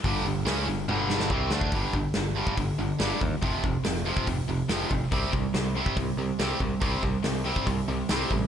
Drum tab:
HH |o---o-----------|o---o---o---o---|o---o---o---o---|o---o---o---o---|
SD |----o-----oo--o-|----o-------o---|----oo------o---|----o-------o---|
T1 |--------o-------|----------------|----------------|----------------|
BD |o-----------o--o|o-o----oo-----o-|o-o----oo-----o-|o-o----oo-----o-|

HH |o---o---o---o---|
SD |----o-------o---|
T1 |----------------|
BD |o-o----oo-----o-|